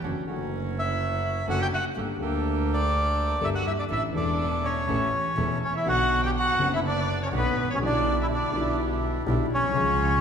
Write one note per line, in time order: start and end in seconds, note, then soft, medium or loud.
0.03 0.24 F#1 medium
0.03 0.25 F#2 medium
0.03 0.25 D3 medium
0.03 0.25 F#3 medium
0.03 0.25 A3 soft
0.03 0.24 C#4 medium
0.03 0.25 C#4 soft
0.03 0.24 D4 medium
0.03 0.24 F#4 medium
0.03 0.25 F#4 medium
0.27 1.43 F#1 loud
0.27 1.43 F#2 medium
0.27 1.42 D3 medium
0.27 1.44 F#3 medium
0.27 1.43 A3 medium
0.27 1.42 C#4 medium
0.27 1.43 C#4 medium
0.27 1.42 F#4 medium
0.31 1.44 F#4 medium
0.79 1.46 E4 medium
0.79 1.46 E5 medium
1.47 1.69 F#1 medium
1.47 1.69 F#2 medium
1.47 1.69 D3 medium
1.47 1.69 F#3 medium
1.47 1.69 A3 medium
1.47 1.69 C#4 medium
1.47 1.69 D4 medium
1.47 1.69 F#4 medium
1.47 1.60 F#4 medium
1.47 1.69 F#4 medium
1.47 1.61 F#5 loud
1.60 1.66 G4 medium
1.60 1.67 G5 loud
1.74 1.85 F#4 medium
1.74 1.85 F#5 medium
1.96 2.17 G1 medium
1.96 2.18 G1 medium
1.96 2.18 G2 medium
1.96 2.17 G3 soft
1.96 2.17 A#3 medium
1.96 2.18 A#3 soft
1.96 2.18 D4 soft
1.96 2.18 G4 soft
1.96 2.18 A4 medium
2.18 3.36 D2 medium
2.18 3.36 D3 medium
2.18 3.34 G3 medium
2.18 3.35 A#3 medium
2.18 3.36 A#3 medium
2.18 3.36 D4 medium
2.18 3.36 G4 medium
2.18 3.36 A4 loud
2.23 3.37 A4 medium
2.73 3.40 D4 medium
2.73 3.46 D5 medium
3.41 3.62 G1 medium
3.41 3.62 G2 medium
3.41 3.62 G3 medium
3.41 3.62 A#3 medium
3.41 3.62 D4 medium
3.41 3.49 E4 medium
3.41 3.62 G4 medium
3.41 3.62 A4 medium
3.41 3.49 E5 loud
3.55 3.66 F#4 medium
3.55 3.66 F#5 medium
3.67 3.73 E4 medium
3.67 3.72 E5 loud
3.79 3.85 D4 medium
3.79 3.84 D5 medium
3.89 4.11 A1 medium
3.89 4.10 A2 medium
3.89 4.10 E3 soft
3.89 4.10 A3 soft
3.89 4.11 D4 medium
3.89 4.11 D4 soft
3.89 4.11 E4 medium
3.89 4.03 E4 medium
3.89 4.11 A4 medium
3.93 4.03 E5 loud
4.13 4.84 E1 medium
4.13 4.84 E2 medium
4.13 4.83 E3 medium
4.13 4.84 A3 medium
4.13 4.83 D4 medium
4.13 4.60 D4 medium
4.13 4.85 D4 medium
4.13 4.83 E4 medium
4.13 4.84 A4 medium
4.17 4.85 A4 medium
4.17 4.66 D5 medium
4.63 5.57 C#4 medium
4.63 5.58 C#5 medium
4.87 5.08 A1 medium
4.87 5.09 A1 medium
4.87 5.09 A2 medium
4.87 5.09 E3 medium
4.87 5.09 A3 medium
4.87 5.08 C#4 medium
4.87 5.09 C#4 medium
4.87 5.08 E4 medium
4.87 5.08 A4 loud
4.87 5.09 A4 medium
5.36 5.58 E1 medium
5.36 5.58 E2 medium
5.36 5.58 E3 medium
5.36 5.58 A3 medium
5.36 5.57 C#4 medium
5.36 5.58 C#4 medium
5.36 5.58 E4 medium
5.36 5.57 A4 medium
5.36 5.58 A4 medium
5.63 5.74 C#4 medium
5.63 5.74 C#5 medium
5.75 5.88 E4 medium
5.75 5.86 E5 medium
5.84 6.55 B1 loud
5.84 6.56 B1 medium
5.84 6.56 B2 medium
5.84 6.55 D3 medium
5.84 6.55 F#3 medium
5.84 6.55 B3 medium
5.84 6.56 B3 medium
5.84 6.56 D4 medium
5.84 6.56 F#4 medium
5.84 6.21 F#5 medium
5.89 6.21 F#4 loud
6.23 6.31 G4 loud
6.23 6.28 G5 medium
6.37 6.71 F#4 medium
6.37 6.70 F#5 medium
6.57 7.28 F#1 medium
6.57 7.29 F#1 medium
6.57 7.29 F#2 medium
6.57 7.28 D3 medium
6.57 7.28 F#3 medium
6.57 7.29 B3 medium
6.57 7.28 D4 medium
6.57 7.28 F#4 loud
6.62 7.30 F#4 medium
6.74 6.80 E4 medium
6.74 6.79 E5 medium
6.86 7.20 D4 medium
6.86 7.19 D5 medium
7.23 7.29 C#4 medium
7.23 7.28 C#5 medium
7.31 7.52 B1 loud
7.31 7.53 B1 medium
7.31 7.53 B2 medium
7.31 7.53 D3 medium
7.31 7.53 F#3 medium
7.31 7.52 B3 medium
7.31 7.53 B3 medium
7.31 7.53 D4 medium
7.31 7.52 F#4 loud
7.31 7.53 F#4 medium
7.31 7.67 B4 medium
7.38 7.69 B3 medium
7.56 7.79 A1 medium
7.64 7.69 G#1 soft
7.70 7.76 A1 medium
7.70 7.75 C#5 medium
7.75 7.81 A#1 medium
7.75 7.79 C#4 medium
7.79 8.49 B1 loud
7.79 8.50 B1 medium
7.79 8.50 B2 medium
7.79 8.49 D3 medium
7.79 8.50 G3 medium
7.79 8.51 B3 medium
7.79 8.49 D4 medium
7.79 8.50 E4 medium
7.84 8.17 D4 medium
7.84 8.51 E4 medium
7.84 8.16 D5 medium
8.21 8.27 E4 medium
8.21 8.25 E5 medium
8.32 8.77 D4 medium
8.32 8.76 D5 medium
8.52 9.22 B1 loud
8.52 9.23 B1 medium
8.52 9.22 B2 medium
8.52 9.22 D3 medium
8.52 9.22 G3 medium
8.52 9.23 B3 medium
8.52 9.22 D4 medium
8.52 9.23 E4 loud
8.56 9.24 E4 medium
9.26 9.46 B1 medium
9.26 9.47 B2 medium
9.26 9.46 D3 medium
9.26 9.46 G3 medium
9.26 9.47 G3 medium
9.26 9.46 B3 medium
9.26 9.46 D4 medium
9.26 9.47 E4 medium
9.26 9.47 E4 loud
9.51 9.73 B1 medium
9.51 10.21 C#4 loud
9.51 10.21 C#5 medium
9.58 9.63 A#1 medium
9.64 9.69 B1 medium
9.69 9.75 C2 medium
9.69 9.74 C#3 medium
9.73 10.21 C#2 loud
9.73 10.21 C#3 loud
9.73 10.21 F3 medium
9.73 10.21 G#3 medium
9.73 10.21 C#4 medium
9.73 10.21 F4 loud
9.73 10.21 F4 medium